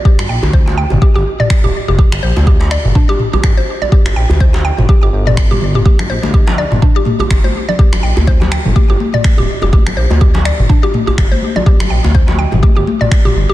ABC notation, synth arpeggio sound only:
X:1
M:4/4
L:1/16
Q:"Swing 16ths" 1/4=124
K:Gm
V:1 name="Synth arpeggio sound"
G z g z c z g z G G z d z G z G | G z c z G z d z D G z G z c z d | G z g z c z g z G G z d z G z G | G z c z G z d z D G z G z c z d |
G z g z c z g z G G z d z G z G | G z c z G z d z D G z G z c z d | G z g z c z g z G G z d z G z G |]